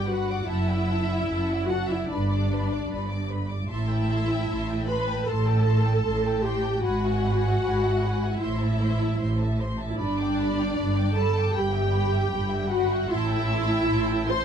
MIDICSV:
0, 0, Header, 1, 6, 480
1, 0, Start_track
1, 0, Tempo, 803213
1, 280, Time_signature, 4, 2, 24, 8
1, 2676, Tempo, 784314
1, 8778, End_track
2, 0, Start_track
2, 0, Title_t, "Violin section"
2, 0, Program_c, 0, 48
2, 43, Note_on_c, 0, 71, 48
2, 44, Note_on_c, 0, 83, 48
2, 161, Note_off_c, 0, 71, 0
2, 161, Note_off_c, 0, 83, 0
2, 174, Note_on_c, 0, 86, 47
2, 175, Note_on_c, 0, 74, 47
2, 289, Note_off_c, 0, 74, 0
2, 289, Note_off_c, 0, 86, 0
2, 296, Note_on_c, 0, 78, 50
2, 296, Note_on_c, 0, 81, 53
2, 403, Note_off_c, 0, 78, 0
2, 403, Note_off_c, 0, 81, 0
2, 418, Note_on_c, 0, 74, 45
2, 419, Note_on_c, 0, 78, 44
2, 530, Note_off_c, 0, 78, 0
2, 532, Note_off_c, 0, 74, 0
2, 537, Note_on_c, 0, 78, 43
2, 537, Note_on_c, 0, 81, 46
2, 652, Note_off_c, 0, 78, 0
2, 652, Note_off_c, 0, 81, 0
2, 662, Note_on_c, 0, 78, 46
2, 663, Note_on_c, 0, 74, 42
2, 772, Note_off_c, 0, 78, 0
2, 774, Note_off_c, 0, 74, 0
2, 778, Note_on_c, 0, 81, 49
2, 779, Note_on_c, 0, 78, 46
2, 883, Note_off_c, 0, 81, 0
2, 884, Note_off_c, 0, 78, 0
2, 900, Note_on_c, 0, 78, 48
2, 902, Note_on_c, 0, 74, 44
2, 1012, Note_off_c, 0, 78, 0
2, 1013, Note_off_c, 0, 74, 0
2, 1019, Note_on_c, 0, 81, 44
2, 1025, Note_on_c, 0, 78, 45
2, 1131, Note_off_c, 0, 81, 0
2, 1134, Note_off_c, 0, 78, 0
2, 1147, Note_on_c, 0, 78, 43
2, 1148, Note_on_c, 0, 74, 45
2, 1254, Note_off_c, 0, 74, 0
2, 1254, Note_off_c, 0, 78, 0
2, 1264, Note_on_c, 0, 71, 52
2, 1264, Note_on_c, 0, 83, 53
2, 1364, Note_off_c, 0, 71, 0
2, 1364, Note_off_c, 0, 83, 0
2, 1378, Note_on_c, 0, 86, 44
2, 1387, Note_on_c, 0, 74, 45
2, 1487, Note_off_c, 0, 86, 0
2, 1491, Note_off_c, 0, 74, 0
2, 1506, Note_on_c, 0, 71, 43
2, 1507, Note_on_c, 0, 83, 43
2, 1610, Note_off_c, 0, 71, 0
2, 1611, Note_off_c, 0, 83, 0
2, 1619, Note_on_c, 0, 86, 43
2, 1620, Note_on_c, 0, 74, 43
2, 1726, Note_off_c, 0, 86, 0
2, 1727, Note_off_c, 0, 74, 0
2, 1737, Note_on_c, 0, 83, 48
2, 1741, Note_on_c, 0, 71, 48
2, 1838, Note_off_c, 0, 83, 0
2, 1840, Note_off_c, 0, 71, 0
2, 1843, Note_on_c, 0, 74, 43
2, 1843, Note_on_c, 0, 86, 45
2, 1959, Note_off_c, 0, 74, 0
2, 1959, Note_off_c, 0, 86, 0
2, 1962, Note_on_c, 0, 83, 47
2, 1967, Note_on_c, 0, 71, 47
2, 2079, Note_off_c, 0, 83, 0
2, 2081, Note_off_c, 0, 71, 0
2, 2083, Note_on_c, 0, 86, 46
2, 2085, Note_on_c, 0, 74, 47
2, 2200, Note_off_c, 0, 86, 0
2, 2201, Note_off_c, 0, 74, 0
2, 2207, Note_on_c, 0, 84, 48
2, 2211, Note_on_c, 0, 81, 50
2, 2313, Note_off_c, 0, 81, 0
2, 2314, Note_off_c, 0, 84, 0
2, 2320, Note_on_c, 0, 81, 46
2, 2326, Note_on_c, 0, 79, 46
2, 2438, Note_off_c, 0, 81, 0
2, 2441, Note_off_c, 0, 79, 0
2, 2454, Note_on_c, 0, 84, 48
2, 2457, Note_on_c, 0, 81, 48
2, 2558, Note_off_c, 0, 81, 0
2, 2565, Note_off_c, 0, 84, 0
2, 2565, Note_on_c, 0, 81, 44
2, 2572, Note_on_c, 0, 79, 43
2, 2679, Note_off_c, 0, 81, 0
2, 2682, Note_off_c, 0, 79, 0
2, 2696, Note_on_c, 0, 81, 47
2, 2697, Note_on_c, 0, 84, 49
2, 2798, Note_off_c, 0, 81, 0
2, 2799, Note_off_c, 0, 84, 0
2, 2805, Note_on_c, 0, 81, 45
2, 2806, Note_on_c, 0, 79, 43
2, 2920, Note_off_c, 0, 81, 0
2, 2921, Note_off_c, 0, 79, 0
2, 2925, Note_on_c, 0, 84, 44
2, 2929, Note_on_c, 0, 81, 45
2, 3037, Note_off_c, 0, 81, 0
2, 3040, Note_off_c, 0, 84, 0
2, 3044, Note_on_c, 0, 81, 44
2, 3050, Note_on_c, 0, 79, 45
2, 3160, Note_off_c, 0, 81, 0
2, 3163, Note_off_c, 0, 79, 0
2, 3166, Note_on_c, 0, 84, 53
2, 3171, Note_on_c, 0, 81, 51
2, 3273, Note_off_c, 0, 84, 0
2, 3276, Note_off_c, 0, 81, 0
2, 3282, Note_on_c, 0, 79, 44
2, 3283, Note_on_c, 0, 81, 45
2, 3390, Note_off_c, 0, 81, 0
2, 3397, Note_on_c, 0, 81, 48
2, 3399, Note_off_c, 0, 79, 0
2, 3402, Note_on_c, 0, 84, 45
2, 3506, Note_off_c, 0, 81, 0
2, 3510, Note_on_c, 0, 79, 44
2, 3513, Note_on_c, 0, 81, 44
2, 3518, Note_off_c, 0, 84, 0
2, 3630, Note_off_c, 0, 81, 0
2, 3632, Note_off_c, 0, 79, 0
2, 3636, Note_on_c, 0, 84, 49
2, 3637, Note_on_c, 0, 81, 46
2, 3747, Note_off_c, 0, 84, 0
2, 3748, Note_off_c, 0, 81, 0
2, 3753, Note_on_c, 0, 79, 43
2, 3756, Note_on_c, 0, 81, 43
2, 3869, Note_off_c, 0, 81, 0
2, 3875, Note_off_c, 0, 79, 0
2, 3876, Note_on_c, 0, 84, 47
2, 3877, Note_on_c, 0, 81, 46
2, 3997, Note_off_c, 0, 81, 0
2, 3997, Note_off_c, 0, 84, 0
2, 3997, Note_on_c, 0, 79, 46
2, 4004, Note_on_c, 0, 81, 46
2, 4114, Note_on_c, 0, 80, 51
2, 4115, Note_on_c, 0, 83, 53
2, 4118, Note_off_c, 0, 79, 0
2, 4121, Note_off_c, 0, 81, 0
2, 4227, Note_off_c, 0, 80, 0
2, 4228, Note_off_c, 0, 83, 0
2, 4239, Note_on_c, 0, 76, 45
2, 4240, Note_on_c, 0, 80, 47
2, 4358, Note_off_c, 0, 76, 0
2, 4358, Note_off_c, 0, 80, 0
2, 4374, Note_on_c, 0, 80, 49
2, 4374, Note_on_c, 0, 83, 46
2, 4482, Note_off_c, 0, 80, 0
2, 4484, Note_off_c, 0, 83, 0
2, 4489, Note_on_c, 0, 80, 46
2, 4496, Note_on_c, 0, 76, 45
2, 4600, Note_off_c, 0, 80, 0
2, 4603, Note_off_c, 0, 76, 0
2, 4608, Note_on_c, 0, 80, 49
2, 4611, Note_on_c, 0, 83, 46
2, 4708, Note_off_c, 0, 80, 0
2, 4712, Note_off_c, 0, 83, 0
2, 4715, Note_on_c, 0, 80, 48
2, 4716, Note_on_c, 0, 76, 44
2, 4832, Note_off_c, 0, 76, 0
2, 4832, Note_off_c, 0, 80, 0
2, 4841, Note_on_c, 0, 83, 48
2, 4844, Note_on_c, 0, 80, 47
2, 4955, Note_off_c, 0, 83, 0
2, 4956, Note_off_c, 0, 80, 0
2, 4965, Note_on_c, 0, 80, 46
2, 4967, Note_on_c, 0, 76, 47
2, 5078, Note_off_c, 0, 80, 0
2, 5078, Note_on_c, 0, 84, 55
2, 5079, Note_off_c, 0, 76, 0
2, 5083, Note_on_c, 0, 72, 53
2, 5187, Note_off_c, 0, 84, 0
2, 5189, Note_off_c, 0, 72, 0
2, 5198, Note_on_c, 0, 81, 47
2, 5201, Note_on_c, 0, 76, 46
2, 5316, Note_off_c, 0, 81, 0
2, 5317, Note_off_c, 0, 76, 0
2, 5327, Note_on_c, 0, 72, 49
2, 5327, Note_on_c, 0, 84, 46
2, 5439, Note_on_c, 0, 76, 45
2, 5440, Note_off_c, 0, 84, 0
2, 5441, Note_off_c, 0, 72, 0
2, 5442, Note_on_c, 0, 81, 46
2, 5557, Note_off_c, 0, 76, 0
2, 5558, Note_off_c, 0, 81, 0
2, 5561, Note_on_c, 0, 84, 51
2, 5564, Note_on_c, 0, 72, 49
2, 5670, Note_off_c, 0, 84, 0
2, 5672, Note_off_c, 0, 72, 0
2, 5689, Note_on_c, 0, 76, 44
2, 5689, Note_on_c, 0, 81, 46
2, 5803, Note_off_c, 0, 76, 0
2, 5803, Note_off_c, 0, 81, 0
2, 5808, Note_on_c, 0, 84, 50
2, 5809, Note_on_c, 0, 72, 50
2, 5924, Note_off_c, 0, 72, 0
2, 5924, Note_off_c, 0, 84, 0
2, 5924, Note_on_c, 0, 76, 49
2, 5924, Note_on_c, 0, 81, 50
2, 6042, Note_off_c, 0, 76, 0
2, 6042, Note_off_c, 0, 81, 0
2, 6044, Note_on_c, 0, 74, 55
2, 6045, Note_on_c, 0, 83, 56
2, 6154, Note_off_c, 0, 74, 0
2, 6154, Note_off_c, 0, 83, 0
2, 6174, Note_on_c, 0, 79, 50
2, 6174, Note_on_c, 0, 86, 50
2, 6287, Note_off_c, 0, 79, 0
2, 6287, Note_off_c, 0, 86, 0
2, 6291, Note_on_c, 0, 74, 51
2, 6292, Note_on_c, 0, 83, 50
2, 6405, Note_off_c, 0, 74, 0
2, 6406, Note_off_c, 0, 83, 0
2, 6420, Note_on_c, 0, 86, 48
2, 6423, Note_on_c, 0, 79, 45
2, 6528, Note_on_c, 0, 74, 52
2, 6528, Note_on_c, 0, 83, 50
2, 6530, Note_off_c, 0, 86, 0
2, 6531, Note_off_c, 0, 79, 0
2, 6635, Note_off_c, 0, 74, 0
2, 6635, Note_off_c, 0, 83, 0
2, 6643, Note_on_c, 0, 86, 51
2, 6646, Note_on_c, 0, 79, 49
2, 6758, Note_off_c, 0, 86, 0
2, 6760, Note_off_c, 0, 79, 0
2, 6772, Note_on_c, 0, 83, 49
2, 6774, Note_on_c, 0, 74, 49
2, 6881, Note_off_c, 0, 83, 0
2, 6883, Note_off_c, 0, 74, 0
2, 6893, Note_on_c, 0, 86, 52
2, 6894, Note_on_c, 0, 79, 52
2, 6997, Note_off_c, 0, 79, 0
2, 7000, Note_off_c, 0, 86, 0
2, 7002, Note_on_c, 0, 83, 54
2, 7005, Note_on_c, 0, 79, 59
2, 7105, Note_off_c, 0, 83, 0
2, 7106, Note_off_c, 0, 79, 0
2, 7113, Note_on_c, 0, 76, 50
2, 7113, Note_on_c, 0, 79, 49
2, 7227, Note_off_c, 0, 76, 0
2, 7227, Note_off_c, 0, 79, 0
2, 7230, Note_on_c, 0, 83, 51
2, 7234, Note_on_c, 0, 79, 53
2, 7340, Note_off_c, 0, 79, 0
2, 7345, Note_off_c, 0, 83, 0
2, 7347, Note_on_c, 0, 79, 48
2, 7348, Note_on_c, 0, 76, 48
2, 7463, Note_off_c, 0, 79, 0
2, 7464, Note_off_c, 0, 76, 0
2, 7466, Note_on_c, 0, 83, 53
2, 7471, Note_on_c, 0, 79, 56
2, 7571, Note_off_c, 0, 79, 0
2, 7575, Note_off_c, 0, 83, 0
2, 7575, Note_on_c, 0, 76, 48
2, 7578, Note_on_c, 0, 79, 51
2, 7694, Note_off_c, 0, 79, 0
2, 7698, Note_off_c, 0, 76, 0
2, 7701, Note_on_c, 0, 83, 52
2, 7702, Note_on_c, 0, 79, 53
2, 7819, Note_off_c, 0, 79, 0
2, 7822, Note_off_c, 0, 83, 0
2, 7826, Note_on_c, 0, 79, 52
2, 7827, Note_on_c, 0, 76, 50
2, 7944, Note_off_c, 0, 76, 0
2, 7944, Note_off_c, 0, 79, 0
2, 7944, Note_on_c, 0, 84, 60
2, 7947, Note_on_c, 0, 81, 57
2, 8054, Note_off_c, 0, 84, 0
2, 8056, Note_off_c, 0, 81, 0
2, 8068, Note_on_c, 0, 81, 52
2, 8069, Note_on_c, 0, 79, 51
2, 8185, Note_off_c, 0, 81, 0
2, 8186, Note_off_c, 0, 79, 0
2, 8199, Note_on_c, 0, 84, 54
2, 8205, Note_on_c, 0, 81, 54
2, 8309, Note_off_c, 0, 81, 0
2, 8312, Note_off_c, 0, 84, 0
2, 8316, Note_on_c, 0, 81, 52
2, 8318, Note_on_c, 0, 79, 50
2, 8419, Note_off_c, 0, 81, 0
2, 8427, Note_on_c, 0, 81, 54
2, 8431, Note_on_c, 0, 84, 54
2, 8433, Note_off_c, 0, 79, 0
2, 8540, Note_off_c, 0, 81, 0
2, 8542, Note_off_c, 0, 84, 0
2, 8551, Note_on_c, 0, 81, 52
2, 8553, Note_on_c, 0, 79, 50
2, 8672, Note_off_c, 0, 81, 0
2, 8673, Note_off_c, 0, 79, 0
2, 8680, Note_on_c, 0, 81, 53
2, 8682, Note_on_c, 0, 84, 52
2, 8778, Note_off_c, 0, 81, 0
2, 8778, Note_off_c, 0, 84, 0
2, 8778, End_track
3, 0, Start_track
3, 0, Title_t, "Violin section"
3, 0, Program_c, 1, 48
3, 29, Note_on_c, 1, 78, 63
3, 277, Note_off_c, 1, 78, 0
3, 282, Note_on_c, 1, 76, 72
3, 998, Note_on_c, 1, 78, 66
3, 1005, Note_off_c, 1, 76, 0
3, 1118, Note_off_c, 1, 78, 0
3, 1121, Note_on_c, 1, 76, 59
3, 1241, Note_off_c, 1, 76, 0
3, 1243, Note_on_c, 1, 74, 60
3, 1940, Note_off_c, 1, 74, 0
3, 2202, Note_on_c, 1, 76, 74
3, 2894, Note_off_c, 1, 76, 0
3, 2918, Note_on_c, 1, 83, 65
3, 3157, Note_off_c, 1, 83, 0
3, 3160, Note_on_c, 1, 81, 61
3, 3876, Note_on_c, 1, 79, 62
3, 3878, Note_off_c, 1, 81, 0
3, 4118, Note_off_c, 1, 79, 0
3, 4126, Note_on_c, 1, 78, 76
3, 5055, Note_off_c, 1, 78, 0
3, 5080, Note_on_c, 1, 76, 58
3, 5801, Note_off_c, 1, 76, 0
3, 6043, Note_on_c, 1, 74, 79
3, 6734, Note_off_c, 1, 74, 0
3, 6765, Note_on_c, 1, 81, 72
3, 6995, Note_off_c, 1, 81, 0
3, 7001, Note_on_c, 1, 79, 66
3, 7706, Note_off_c, 1, 79, 0
3, 7712, Note_on_c, 1, 78, 68
3, 7947, Note_off_c, 1, 78, 0
3, 7949, Note_on_c, 1, 76, 85
3, 8671, Note_on_c, 1, 84, 82
3, 8674, Note_off_c, 1, 76, 0
3, 8778, Note_off_c, 1, 84, 0
3, 8778, End_track
4, 0, Start_track
4, 0, Title_t, "Viola section"
4, 0, Program_c, 2, 48
4, 40, Note_on_c, 2, 66, 77
4, 279, Note_on_c, 2, 64, 82
4, 282, Note_off_c, 2, 66, 0
4, 989, Note_off_c, 2, 64, 0
4, 1006, Note_on_c, 2, 66, 74
4, 1124, Note_off_c, 2, 66, 0
4, 1141, Note_on_c, 2, 64, 68
4, 1251, Note_off_c, 2, 64, 0
4, 1256, Note_on_c, 2, 62, 69
4, 1961, Note_off_c, 2, 62, 0
4, 2213, Note_on_c, 2, 64, 76
4, 2900, Note_off_c, 2, 64, 0
4, 2928, Note_on_c, 2, 71, 80
4, 3155, Note_on_c, 2, 69, 76
4, 3158, Note_off_c, 2, 71, 0
4, 3875, Note_off_c, 2, 69, 0
4, 3876, Note_on_c, 2, 67, 75
4, 4107, Note_on_c, 2, 66, 86
4, 4118, Note_off_c, 2, 67, 0
4, 5045, Note_off_c, 2, 66, 0
4, 5068, Note_on_c, 2, 64, 71
4, 5795, Note_off_c, 2, 64, 0
4, 5991, Note_on_c, 2, 64, 55
4, 6036, Note_off_c, 2, 64, 0
4, 6040, Note_on_c, 2, 62, 84
4, 6757, Note_off_c, 2, 62, 0
4, 6762, Note_on_c, 2, 69, 83
4, 6989, Note_off_c, 2, 69, 0
4, 6995, Note_on_c, 2, 67, 77
4, 7703, Note_off_c, 2, 67, 0
4, 7709, Note_on_c, 2, 66, 82
4, 7941, Note_off_c, 2, 66, 0
4, 7954, Note_on_c, 2, 64, 92
4, 8677, Note_off_c, 2, 64, 0
4, 8678, Note_on_c, 2, 72, 89
4, 8778, Note_off_c, 2, 72, 0
4, 8778, End_track
5, 0, Start_track
5, 0, Title_t, "Cello section"
5, 0, Program_c, 3, 48
5, 0, Note_on_c, 3, 43, 62
5, 226, Note_off_c, 3, 43, 0
5, 284, Note_on_c, 3, 42, 59
5, 710, Note_off_c, 3, 42, 0
5, 769, Note_on_c, 3, 42, 60
5, 1188, Note_off_c, 3, 42, 0
5, 1254, Note_on_c, 3, 43, 64
5, 1665, Note_off_c, 3, 43, 0
5, 1724, Note_on_c, 3, 43, 61
5, 2144, Note_off_c, 3, 43, 0
5, 2201, Note_on_c, 3, 45, 56
5, 2621, Note_off_c, 3, 45, 0
5, 2682, Note_on_c, 3, 45, 57
5, 3103, Note_off_c, 3, 45, 0
5, 3167, Note_on_c, 3, 45, 62
5, 3584, Note_off_c, 3, 45, 0
5, 3639, Note_on_c, 3, 45, 61
5, 4063, Note_off_c, 3, 45, 0
5, 4127, Note_on_c, 3, 44, 60
5, 4543, Note_off_c, 3, 44, 0
5, 4599, Note_on_c, 3, 44, 59
5, 5016, Note_off_c, 3, 44, 0
5, 5077, Note_on_c, 3, 45, 65
5, 5501, Note_off_c, 3, 45, 0
5, 5559, Note_on_c, 3, 45, 62
5, 5985, Note_off_c, 3, 45, 0
5, 6041, Note_on_c, 3, 43, 65
5, 6464, Note_off_c, 3, 43, 0
5, 6525, Note_on_c, 3, 43, 67
5, 6938, Note_off_c, 3, 43, 0
5, 6992, Note_on_c, 3, 43, 74
5, 7405, Note_off_c, 3, 43, 0
5, 7466, Note_on_c, 3, 43, 67
5, 7888, Note_off_c, 3, 43, 0
5, 7952, Note_on_c, 3, 45, 69
5, 8373, Note_off_c, 3, 45, 0
5, 8436, Note_on_c, 3, 45, 69
5, 8778, Note_off_c, 3, 45, 0
5, 8778, End_track
6, 0, Start_track
6, 0, Title_t, "Double bass section"
6, 0, Program_c, 4, 48
6, 0, Note_on_c, 4, 31, 57
6, 225, Note_off_c, 4, 31, 0
6, 280, Note_on_c, 4, 30, 61
6, 708, Note_off_c, 4, 30, 0
6, 769, Note_on_c, 4, 30, 56
6, 1188, Note_off_c, 4, 30, 0
6, 1248, Note_on_c, 4, 31, 65
6, 1662, Note_off_c, 4, 31, 0
6, 1721, Note_on_c, 4, 31, 59
6, 2142, Note_off_c, 4, 31, 0
6, 2201, Note_on_c, 4, 33, 64
6, 2621, Note_off_c, 4, 33, 0
6, 2679, Note_on_c, 4, 33, 61
6, 3102, Note_off_c, 4, 33, 0
6, 3167, Note_on_c, 4, 33, 67
6, 3584, Note_off_c, 4, 33, 0
6, 3634, Note_on_c, 4, 33, 56
6, 4060, Note_off_c, 4, 33, 0
6, 4124, Note_on_c, 4, 32, 68
6, 4541, Note_off_c, 4, 32, 0
6, 4602, Note_on_c, 4, 32, 62
6, 5017, Note_off_c, 4, 32, 0
6, 5077, Note_on_c, 4, 33, 67
6, 5501, Note_off_c, 4, 33, 0
6, 5561, Note_on_c, 4, 33, 63
6, 5985, Note_off_c, 4, 33, 0
6, 6051, Note_on_c, 4, 31, 66
6, 6469, Note_off_c, 4, 31, 0
6, 6531, Note_on_c, 4, 31, 64
6, 6941, Note_off_c, 4, 31, 0
6, 7000, Note_on_c, 4, 31, 76
6, 7409, Note_off_c, 4, 31, 0
6, 7469, Note_on_c, 4, 31, 68
6, 7889, Note_off_c, 4, 31, 0
6, 7955, Note_on_c, 4, 33, 76
6, 8375, Note_off_c, 4, 33, 0
6, 8440, Note_on_c, 4, 33, 69
6, 8778, Note_off_c, 4, 33, 0
6, 8778, End_track
0, 0, End_of_file